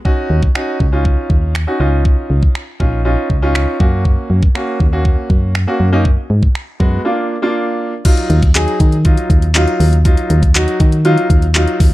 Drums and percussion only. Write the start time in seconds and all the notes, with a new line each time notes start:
0.05 kick
0.43 kick
0.55 finger snap
0.80 kick
1.05 kick
1.30 kick
1.55 finger snap
2.05 kick
2.43 kick
2.55 finger snap
2.80 kick
3.30 kick
3.55 finger snap
3.80 kick
4.05 kick
4.43 kick
4.55 finger snap
4.80 kick
5.05 kick
5.30 kick
5.55 finger snap
6.05 kick
6.43 kick
6.55 finger snap
6.80 kick
8.05 kick, closed hi-hat, crash
8.17 closed hi-hat
8.30 closed hi-hat
8.42 kick, closed hi-hat
8.55 clap, closed hi-hat
8.68 closed hi-hat
8.80 kick, closed hi-hat
8.92 closed hi-hat
9.05 kick, closed hi-hat
9.17 closed hi-hat
9.30 kick, closed hi-hat
9.42 closed hi-hat
9.55 clap, closed hi-hat
9.68 closed hi-hat
9.80 open hi-hat
9.93 closed hi-hat
10.05 kick, closed hi-hat
10.17 closed hi-hat
10.30 closed hi-hat
10.43 kick, closed hi-hat
10.55 clap, closed hi-hat
10.68 closed hi-hat
10.80 kick, closed hi-hat
10.92 closed hi-hat
11.05 closed hi-hat
11.18 closed hi-hat
11.30 kick, closed hi-hat
11.42 closed hi-hat
11.55 clap, closed hi-hat
11.67 closed hi-hat
11.80 kick, open hi-hat